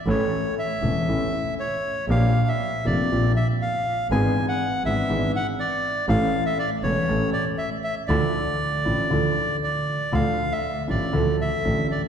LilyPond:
<<
  \new Staff \with { instrumentName = "Bandoneon" } { \time 4/4 \key d \minor \tempo 4 = 119 cis''4 e''2 cis''4 | f''8. e''8. d''4 e''8 f''4 | gis''8. fis''8. e''4 fis''8 d''4 | f''8. e''16 d''8 cis''4 d''8 e''8 e''8 |
d''2. d''4 | f''8. e''8. d''4 e''4 d''8 | }
  \new Staff \with { instrumentName = "Grand piano" } { \clef bass \time 4/4 \key d \minor <a,, a, e a cis' a'>8 r4 <e,, e, e a cis' a'>8 <a,, a, e a cis' a'>8 r4. | <bes,, bes, f bes d' g'>8 r4 <f,, f, f bes d' g'>8 <bes,, bes, f bes d' g'>8 r4. | <gis,, gis, e b d' gis'>8 r4 <gis,, gis, e b d' gis'>8 <gis,, gis, e b d' gis'>8 r4. | <a,, a, e a cis' a'>8 r4 <e,, e, e a cis' a'>8 <a,, a, e a cis' a'>8 r4. |
<d, d f d' e' a'>8 r4 <a,, a, f d' e' a'>8 <d, d f d' e' a'>8 r4. | <d, d f a d' a'>8 r4 <a,, a, f a d' a'>8 <d, d f a d' a'>8 r8 <a,, a, f a d' a'>8 r8 | }
  \new Staff \with { instrumentName = "Double bass" } { \clef bass \time 4/4 \key d \minor a,,8 r4 e,,8 a,,8 r4. | bes,,8 r4 f,,8 bes,,8 r4. | gis,,8 r4 gis,,8 gis,,8 r4. | a,,8 r4 e,,8 a,,8 r4. |
d,8 r4 a,,8 d,8 r4. | d,8 r4 a,,8 d,8 r8 a,,8 r8 | }
>>